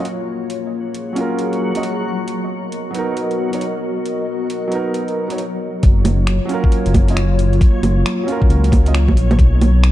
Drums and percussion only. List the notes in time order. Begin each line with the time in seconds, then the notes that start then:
0.05 closed hi-hat
0.50 closed hi-hat
0.94 closed hi-hat
1.16 closed hi-hat
1.39 closed hi-hat
1.53 closed hi-hat
1.75 closed hi-hat
1.83 closed hi-hat
2.28 closed hi-hat
2.72 closed hi-hat
2.94 closed hi-hat
3.17 closed hi-hat
3.31 closed hi-hat
3.53 closed hi-hat
3.61 closed hi-hat
4.06 closed hi-hat
4.50 closed hi-hat
4.72 closed hi-hat
4.94 closed hi-hat
5.08 closed hi-hat
5.30 closed hi-hat
5.38 closed hi-hat
5.83 kick, closed hi-hat
6.05 open hi-hat, low bongo
6.27 finger snap, closed hi-hat
6.49 open hi-hat
6.64 kick
6.72 closed hi-hat
6.86 closed hi-hat
6.94 kick, open hi-hat, low bongo
7.08 closed hi-hat
7.17 finger snap, closed hi-hat
7.39 open hi-hat
7.53 closed hi-hat
7.61 kick, closed hi-hat
7.83 open hi-hat, low bongo
8.06 finger snap, closed hi-hat
8.28 open hi-hat
8.42 kick
8.50 closed hi-hat
8.64 closed hi-hat
8.72 kick, open hi-hat, low bongo
8.86 closed hi-hat
8.94 finger snap, closed hi-hat
9.08 kick, low bongo
9.17 open hi-hat
9.31 closed hi-hat, low bongo
9.39 kick, closed hi-hat
9.61 open hi-hat, low bongo
9.84 finger snap, closed hi-hat